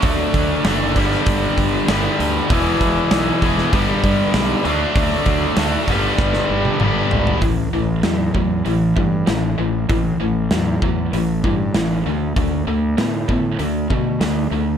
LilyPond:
<<
  \new Staff \with { instrumentName = "Overdriven electric guitar" } { \clef bass \time 4/4 \key d \major \tempo 4 = 97 <d fis a d' fis'>4 <d fis a d' fis'>8 <g, d g b d' g'>4. <g, d g b d' g'>4 | <e, b, e b e' gis'>4. <e, b, e b e' gis'>8 <g, d g b d' g'>4. <d fis a d' fis'>8~ | <d fis a d' fis'>4 <d fis a d' fis'>8 <g, d g b d' g'>4. <g, d g b d' g'>4 | <a, e>8 <a, e>8 <a, fis>8 <a, fis>8 <a, e>8 <a, e>8 <a, e>8 <a, e>8 |
<a, e>8 <a, e>8 <a, fis>8 <a, fis>8 <a, e>8 <a, e>8 <a, e>8 <d a>8 | <d a>8 <d a>8 <d b>8 <d b>8 <d a>8 <d a>8 <d a>8 <d a>8 | }
  \new Staff \with { instrumentName = "Distorted electric guitar" } { \clef bass \time 4/4 \key d \major <d a d'>4 <d a d'>8 <g, d g>4. <g, d g>4 | <e, b, e>4. <e, b, e>8 <g, d g>4. <d a d'>8~ | <d a d'>4 <d a d'>8 <g, d g>4. <g, d g>4 | <a, e>8 <a, e>8 <a, fis>8 <a, fis>8 <a, e>8 <a, e>8 <a, e>8 <a, e>8 |
<a, e>8 <a, e>8 <a, fis>8 <a, fis>8 <a, e>8 <a, e>8 <a, e>8 <d a>8 | <d a>8 <d a>8 <d b>8 <d b>8 <d a>8 <d a>8 <d a>8 <d a>8 | }
  \new Staff \with { instrumentName = "Overdriven electric guitar" } { \clef bass \time 4/4 \key d \major <d a d'>4. <g, d g>2~ <g, d g>8 | <e, b, e>2 <g, d g>4. <d a d'>8~ | <d a d'>4. <g, d g>2~ <g, d g>8 | r1 |
r1 | r1 | }
  \new Staff \with { instrumentName = "Fingered electric bass" } { \clef bass \time 4/4 \key d \major d,8 d,8 fis,,8 g,,8 g,,8 g,,8 g,,8 d,8 | e,,8 e,,8 b,,8 e,,8 g,,8 g,8 b,,8 d,8 | d,8 d,8 d,8 g,,8 g,,8 g,,8 g,,8 gis,,8 | a,,8 a,,8 e,8 e,8 a,,8 g,8 a,,8 a,,8 |
a,,8 a,,8 e,8 e,8 a,,8 g,8 a,,8 d,8 | d,8 d,8 a,8 a,8 d,8 b,8 d,8 d,8 | }
  \new DrumStaff \with { instrumentName = "Drums" } \drummode { \time 4/4 <hho bd>8 <hho bd>8 <hho sn>8 <hho bd>16 sn16 <hho bd>8 <hho bd>8 <hho sn>8 hho8 | <hho bd>8 <hho bd>8 <hho sn>8 <hho bd>16 sn16 <hho bd>8 <hho bd>8 <hho sn>8 hho8 | <hho bd>8 <hho bd>8 <hho sn>8 <hho bd>8 <bd sn>16 sn8 tommh16 toml8 tomfh16 tomfh16 | <hho bd>4 <hho sn>8 bd8 hho8 bd8 <hho sn>4 |
<hho bd>4 <hho sn>8 bd8 hho8 bd8 <hho sn>4 | <hho bd>4 <hho sn>8 bd8 hho8 bd8 <hho sn>4 | }
>>